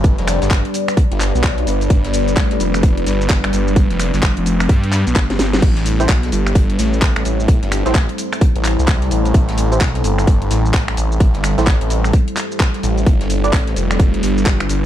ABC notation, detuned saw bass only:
X:1
M:4/4
L:1/16
Q:"Swing 16ths" 1/4=129
K:Am
V:1 name="Detuned saw bass" clef=bass
G,,, F,,,2 G,,,2 z4 G,,,2 B,,,3 G,,,2 | G,,,4 A,,,2 F,,,4 G,,,3 G,,, G,,,2- | G,,, F,,,2 G,,,2 F,,,3 G,,3 B,,, G,,,2 G,,,2 | A,,,4 B,,,2 G,,,4 A,,,3 A,,, A,,,2- |
A,,, G,,,2 A,,,2 z4 A,,,2 C,,3 A,,,2 | A,,,4 B,,,2 G,,,4 A,,,3 A,,, A,,,2- | A,,, G,,,2 A,,,2 A,,,3 z6 A,,,2 | G,,,4 A,,,2 F,,,4 G,,,3 G,,, G,,,2 |]